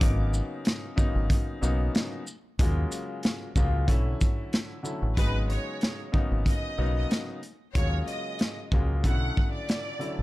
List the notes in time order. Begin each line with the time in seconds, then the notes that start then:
0.01 G#1 C#3 F#3 A#3 B3 D#4, kick, closed hi-hat
0.34 shaker
0.65 snare, closed hi-hat
0.96 C#3 F#3 A#3 B3 D#4, kick, shaker
1.16 G#1
1.30 kick, closed hi-hat
1.61 B1 C#3 F#3 A#3 B3 D#4, shaker
1.95 snare, closed hi-hat
2.27 shaker
2.59 D#2 C#3 F#3 G#3 A#3 F4, kick, closed hi-hat
2.92 closed hi-hat, shaker
3.23 snare, closed hi-hat
3.56 C#2 C#3 F#3 G#3 A#3 F4, kick, shaker
3.88 B1 D3 F#3 A3 C#4 E4, kick, closed hi-hat
4.21 kick, closed hi-hat, shaker
4.53 snare, closed hi-hat
4.83 D3 F#3 A3 C#4 E4, shaker
5.03 A1
5.16 G#1 C#3 F#3 G#3 B3 D#4 B4, kick, closed hi-hat
5.50 C#5, closed hi-hat
5.81 snare, closed hi-hat
6.12 C#3 F#3 A#3 B3 D#4, kick
6.32 G#1
6.46 D#5, kick, closed hi-hat
6.77 B1 C#3 F#3 A#3 B3 D#4
6.97 D#5
7.11 snare, closed hi-hat
7.43 closed hi-hat
7.74 D#2 C#3 F#3 G#3 A#3 F4 C#5, kick, closed hi-hat
8.08 D#5, closed hi-hat
8.39 snare, closed hi-hat
8.72 C#2 C#3 F#3 G#3 A#3 F4, kick
9.04 B1 C#3 D3 F#3 A3 E4 F#5, kick, closed hi-hat
9.37 kick
9.53 D5
9.69 snare, closed hi-hat
9.99 D3 F#3 A3 C#4 E4, closed hi-hat
10.19 A1